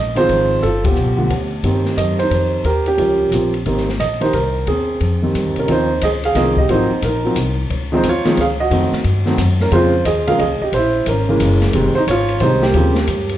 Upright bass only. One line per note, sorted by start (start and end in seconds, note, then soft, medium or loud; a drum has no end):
0.00 0.28 A#1 medium
0.29 0.62 G#1 medium
0.63 0.95 G1 medium
0.96 1.29 B1 medium
1.30 1.63 D2 medium
1.63 1.96 G2 medium
1.97 2.30 F#2 medium
2.30 2.64 F2 medium
2.64 2.97 D#2 medium
2.98 3.31 C#2 medium
3.31 3.65 A#1 medium
3.66 3.99 G#1 medium
3.99 4.32 A#1 medium
4.33 4.66 C2 medium
4.67 5.00 D#2 medium
5.00 5.33 F2 medium
5.34 5.45 G2 medium
5.45 5.56 D#2 soft
5.56 5.67 C2 medium
5.68 6.01 D#2 medium
6.02 6.34 C#2 medium
6.35 6.68 C2 medium
6.69 6.89 G#1 medium
6.90 muted upright bass stroke soft
7.02 7.35 A#1 medium
7.36 7.69 C2 medium
7.70 8.03 C#2 medium
8.03 8.24 D#2 medium
8.25 muted upright bass stroke soft
8.37 8.70 C#2 medium
8.70 8.91 F2 medium
8.93 muted upright bass stroke soft
9.04 9.37 G2 medium
9.38 9.71 F#2 medium
9.71 10.04 F2 medium
10.05 10.38 D#2 medium
10.39 10.59 C#2 medium
10.61 muted upright bass stroke soft
10.72 11.05 A#1 medium
11.06 11.39 G#1 medium
11.40 11.73 F#1 medium
11.74 11.94 F1 medium
11.94 muted upright bass stroke soft
12.07 12.40 G#1 medium
12.41 12.73 C2 medium
12.74 13.07 D#2 medium
13.08 13.38 G2 medium